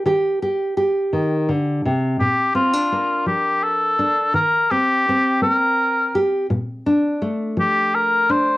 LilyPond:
<<
  \new Staff \with { instrumentName = "Cor anglais" } { \time 6/8 \key bes \major \tempo 4. = 56 r2. | g'8 f'4 g'8 a'4 | bes'8 g'4 bes'4 r8 | r4. g'8 bes'8 c''8 | }
  \new Staff \with { instrumentName = "Nylon-string guitar" } { \time 6/8 \key bes \major << { g'8 g'8 g'2 | r8 c'16 d'16 bes4. d'8 | r8 c'8 c'4. g'8 | r8 d'8 a4. d'8 | } \\ { ees4 r8 ees8 d8 c8 | bes,4 r8 f4 r8 | ees4 r8 bes4 r8 | bes,4 r8 f4 r8 | } >> }
>>